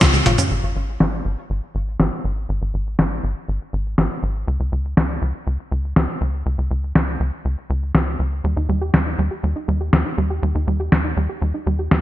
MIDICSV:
0, 0, Header, 1, 4, 480
1, 0, Start_track
1, 0, Tempo, 495868
1, 493, Time_signature, 4, 2, 24, 8
1, 11629, End_track
2, 0, Start_track
2, 0, Title_t, "Synth arpeggio sound"
2, 0, Program_c, 0, 84
2, 12, Note_on_c, 0, 65, 105
2, 94, Note_off_c, 0, 65, 0
2, 132, Note_on_c, 0, 56, 79
2, 246, Note_off_c, 0, 56, 0
2, 251, Note_on_c, 0, 65, 109
2, 366, Note_off_c, 0, 65, 0
2, 372, Note_on_c, 0, 61, 101
2, 454, Note_off_c, 0, 61, 0
2, 8172, Note_on_c, 0, 55, 81
2, 8221, Note_off_c, 0, 55, 0
2, 8292, Note_on_c, 0, 63, 70
2, 8374, Note_off_c, 0, 63, 0
2, 8412, Note_on_c, 0, 55, 100
2, 8462, Note_off_c, 0, 55, 0
2, 8532, Note_on_c, 0, 67, 75
2, 8646, Note_off_c, 0, 67, 0
2, 8652, Note_on_c, 0, 55, 77
2, 8701, Note_off_c, 0, 55, 0
2, 8772, Note_on_c, 0, 63, 71
2, 8854, Note_off_c, 0, 63, 0
2, 8892, Note_on_c, 0, 55, 92
2, 8942, Note_off_c, 0, 55, 0
2, 9012, Note_on_c, 0, 67, 71
2, 9126, Note_off_c, 0, 67, 0
2, 9132, Note_on_c, 0, 55, 80
2, 9181, Note_off_c, 0, 55, 0
2, 9252, Note_on_c, 0, 63, 71
2, 9334, Note_off_c, 0, 63, 0
2, 9372, Note_on_c, 0, 55, 100
2, 9421, Note_off_c, 0, 55, 0
2, 9492, Note_on_c, 0, 67, 72
2, 9607, Note_off_c, 0, 67, 0
2, 9612, Note_on_c, 0, 55, 78
2, 9661, Note_off_c, 0, 55, 0
2, 9732, Note_on_c, 0, 63, 70
2, 9814, Note_off_c, 0, 63, 0
2, 9852, Note_on_c, 0, 55, 99
2, 9901, Note_off_c, 0, 55, 0
2, 9973, Note_on_c, 0, 67, 74
2, 10087, Note_off_c, 0, 67, 0
2, 10092, Note_on_c, 0, 55, 81
2, 10142, Note_off_c, 0, 55, 0
2, 10212, Note_on_c, 0, 63, 72
2, 10294, Note_off_c, 0, 63, 0
2, 10331, Note_on_c, 0, 55, 99
2, 10381, Note_off_c, 0, 55, 0
2, 10452, Note_on_c, 0, 67, 73
2, 10566, Note_off_c, 0, 67, 0
2, 10572, Note_on_c, 0, 55, 78
2, 10621, Note_off_c, 0, 55, 0
2, 10692, Note_on_c, 0, 63, 73
2, 10774, Note_off_c, 0, 63, 0
2, 10812, Note_on_c, 0, 55, 99
2, 10862, Note_off_c, 0, 55, 0
2, 10932, Note_on_c, 0, 67, 73
2, 11046, Note_off_c, 0, 67, 0
2, 11052, Note_on_c, 0, 55, 78
2, 11102, Note_off_c, 0, 55, 0
2, 11172, Note_on_c, 0, 63, 72
2, 11254, Note_off_c, 0, 63, 0
2, 11292, Note_on_c, 0, 55, 101
2, 11341, Note_off_c, 0, 55, 0
2, 11412, Note_on_c, 0, 67, 72
2, 11526, Note_off_c, 0, 67, 0
2, 11532, Note_on_c, 0, 55, 81
2, 11581, Note_off_c, 0, 55, 0
2, 11629, End_track
3, 0, Start_track
3, 0, Title_t, "Analog synth bass"
3, 0, Program_c, 1, 38
3, 12, Note_on_c, 1, 37, 103
3, 227, Note_off_c, 1, 37, 0
3, 252, Note_on_c, 1, 32, 102
3, 360, Note_off_c, 1, 32, 0
3, 492, Note_on_c, 1, 32, 92
3, 600, Note_off_c, 1, 32, 0
3, 612, Note_on_c, 1, 32, 74
3, 720, Note_off_c, 1, 32, 0
3, 732, Note_on_c, 1, 32, 80
3, 947, Note_off_c, 1, 32, 0
3, 972, Note_on_c, 1, 32, 79
3, 1187, Note_off_c, 1, 32, 0
3, 1212, Note_on_c, 1, 32, 86
3, 1320, Note_off_c, 1, 32, 0
3, 1452, Note_on_c, 1, 32, 82
3, 1560, Note_off_c, 1, 32, 0
3, 1692, Note_on_c, 1, 32, 85
3, 1907, Note_off_c, 1, 32, 0
3, 1932, Note_on_c, 1, 32, 91
3, 2040, Note_off_c, 1, 32, 0
3, 2172, Note_on_c, 1, 32, 88
3, 2387, Note_off_c, 1, 32, 0
3, 2412, Note_on_c, 1, 32, 94
3, 2520, Note_off_c, 1, 32, 0
3, 2533, Note_on_c, 1, 32, 78
3, 2640, Note_off_c, 1, 32, 0
3, 2653, Note_on_c, 1, 32, 80
3, 2867, Note_off_c, 1, 32, 0
3, 2893, Note_on_c, 1, 32, 80
3, 3107, Note_off_c, 1, 32, 0
3, 3133, Note_on_c, 1, 32, 88
3, 3240, Note_off_c, 1, 32, 0
3, 3373, Note_on_c, 1, 32, 83
3, 3480, Note_off_c, 1, 32, 0
3, 3613, Note_on_c, 1, 32, 85
3, 3827, Note_off_c, 1, 32, 0
3, 3853, Note_on_c, 1, 32, 89
3, 3960, Note_off_c, 1, 32, 0
3, 4093, Note_on_c, 1, 32, 91
3, 4307, Note_off_c, 1, 32, 0
3, 4332, Note_on_c, 1, 37, 94
3, 4440, Note_off_c, 1, 37, 0
3, 4452, Note_on_c, 1, 37, 77
3, 4560, Note_off_c, 1, 37, 0
3, 4572, Note_on_c, 1, 37, 80
3, 4787, Note_off_c, 1, 37, 0
3, 4812, Note_on_c, 1, 37, 77
3, 5027, Note_off_c, 1, 37, 0
3, 5053, Note_on_c, 1, 37, 87
3, 5160, Note_off_c, 1, 37, 0
3, 5293, Note_on_c, 1, 37, 86
3, 5400, Note_off_c, 1, 37, 0
3, 5532, Note_on_c, 1, 37, 85
3, 5747, Note_off_c, 1, 37, 0
3, 5772, Note_on_c, 1, 37, 92
3, 5880, Note_off_c, 1, 37, 0
3, 6013, Note_on_c, 1, 37, 90
3, 6227, Note_off_c, 1, 37, 0
3, 6252, Note_on_c, 1, 37, 89
3, 6360, Note_off_c, 1, 37, 0
3, 6373, Note_on_c, 1, 37, 78
3, 6480, Note_off_c, 1, 37, 0
3, 6492, Note_on_c, 1, 37, 80
3, 6707, Note_off_c, 1, 37, 0
3, 6732, Note_on_c, 1, 37, 76
3, 6947, Note_off_c, 1, 37, 0
3, 6972, Note_on_c, 1, 37, 89
3, 7080, Note_off_c, 1, 37, 0
3, 7212, Note_on_c, 1, 37, 82
3, 7320, Note_off_c, 1, 37, 0
3, 7452, Note_on_c, 1, 37, 90
3, 7667, Note_off_c, 1, 37, 0
3, 7692, Note_on_c, 1, 37, 88
3, 7907, Note_off_c, 1, 37, 0
3, 7932, Note_on_c, 1, 37, 84
3, 8147, Note_off_c, 1, 37, 0
3, 8172, Note_on_c, 1, 39, 94
3, 8280, Note_off_c, 1, 39, 0
3, 8292, Note_on_c, 1, 39, 79
3, 8400, Note_off_c, 1, 39, 0
3, 8412, Note_on_c, 1, 39, 84
3, 8627, Note_off_c, 1, 39, 0
3, 8652, Note_on_c, 1, 39, 79
3, 8867, Note_off_c, 1, 39, 0
3, 8892, Note_on_c, 1, 39, 91
3, 9000, Note_off_c, 1, 39, 0
3, 9133, Note_on_c, 1, 39, 87
3, 9240, Note_off_c, 1, 39, 0
3, 9373, Note_on_c, 1, 39, 85
3, 9587, Note_off_c, 1, 39, 0
3, 9612, Note_on_c, 1, 39, 93
3, 9720, Note_off_c, 1, 39, 0
3, 9853, Note_on_c, 1, 39, 88
3, 10067, Note_off_c, 1, 39, 0
3, 10092, Note_on_c, 1, 39, 94
3, 10200, Note_off_c, 1, 39, 0
3, 10213, Note_on_c, 1, 39, 80
3, 10320, Note_off_c, 1, 39, 0
3, 10332, Note_on_c, 1, 39, 82
3, 10547, Note_off_c, 1, 39, 0
3, 10572, Note_on_c, 1, 39, 79
3, 10787, Note_off_c, 1, 39, 0
3, 10812, Note_on_c, 1, 39, 87
3, 10919, Note_off_c, 1, 39, 0
3, 11051, Note_on_c, 1, 39, 85
3, 11159, Note_off_c, 1, 39, 0
3, 11292, Note_on_c, 1, 39, 84
3, 11507, Note_off_c, 1, 39, 0
3, 11532, Note_on_c, 1, 39, 94
3, 11629, Note_off_c, 1, 39, 0
3, 11629, End_track
4, 0, Start_track
4, 0, Title_t, "Drums"
4, 11, Note_on_c, 9, 38, 116
4, 11, Note_on_c, 9, 42, 68
4, 11, Note_on_c, 9, 48, 64
4, 11, Note_on_c, 9, 69, 52
4, 12, Note_on_c, 9, 36, 102
4, 108, Note_off_c, 9, 38, 0
4, 108, Note_off_c, 9, 42, 0
4, 108, Note_off_c, 9, 48, 0
4, 108, Note_off_c, 9, 69, 0
4, 109, Note_off_c, 9, 36, 0
4, 132, Note_on_c, 9, 42, 41
4, 132, Note_on_c, 9, 48, 64
4, 132, Note_on_c, 9, 69, 31
4, 228, Note_off_c, 9, 42, 0
4, 228, Note_off_c, 9, 48, 0
4, 228, Note_off_c, 9, 69, 0
4, 251, Note_on_c, 9, 42, 90
4, 251, Note_on_c, 9, 47, 85
4, 348, Note_off_c, 9, 42, 0
4, 348, Note_off_c, 9, 47, 0
4, 371, Note_on_c, 9, 42, 41
4, 371, Note_on_c, 9, 45, 86
4, 371, Note_on_c, 9, 69, 65
4, 468, Note_off_c, 9, 42, 0
4, 468, Note_off_c, 9, 45, 0
4, 468, Note_off_c, 9, 69, 0
4, 972, Note_on_c, 9, 38, 102
4, 1068, Note_off_c, 9, 38, 0
4, 1932, Note_on_c, 9, 38, 104
4, 2029, Note_off_c, 9, 38, 0
4, 2892, Note_on_c, 9, 38, 104
4, 2989, Note_off_c, 9, 38, 0
4, 3853, Note_on_c, 9, 38, 106
4, 3950, Note_off_c, 9, 38, 0
4, 4813, Note_on_c, 9, 38, 110
4, 4910, Note_off_c, 9, 38, 0
4, 5772, Note_on_c, 9, 38, 114
4, 5869, Note_off_c, 9, 38, 0
4, 6732, Note_on_c, 9, 38, 109
4, 6829, Note_off_c, 9, 38, 0
4, 7692, Note_on_c, 9, 38, 110
4, 7789, Note_off_c, 9, 38, 0
4, 8651, Note_on_c, 9, 38, 104
4, 8748, Note_off_c, 9, 38, 0
4, 9611, Note_on_c, 9, 38, 108
4, 9708, Note_off_c, 9, 38, 0
4, 10572, Note_on_c, 9, 38, 99
4, 10668, Note_off_c, 9, 38, 0
4, 11532, Note_on_c, 9, 38, 107
4, 11629, Note_off_c, 9, 38, 0
4, 11629, End_track
0, 0, End_of_file